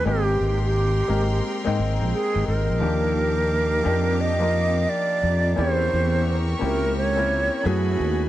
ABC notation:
X:1
M:4/4
L:1/16
Q:"Swing 16ths" 1/4=87
K:Eb
V:1 name="String section"
[Bgc']16 | [Gfd']16 | [B=e_d']12 [=A,_a_c']4 |]
V:2 name="Flute"
G3 G6 z3 A2 B2- | B8 e4 d4 | c4 z2 B2 _d4 _G4 |]
V:3 name="Grand piano"
[A,B,CEG]4- [A,B,CEG] z [A,B,CEB]3 [A,B,CEg]6 z | [F,B,DEG]4- [F,B,DEG] z [F,B,DEG]3 [F,B,EFB]6 z | [B,C_D=EG]4- [B,CDEG] z [B,CDEG]3 [B,CDEB]3 [=A,_CD_F_A]3 z |]
V:4 name="Fretless electric bass" clef=bass
A,,,2 A,,,4 A,,,2 z A,, A,,, B,,, z A,,, A,,, B,,, | E,,6 F,,6 z2 F,,2 | =E,,2 E,,4 _D,,4- D,, z _G,,2 _E,,2 |]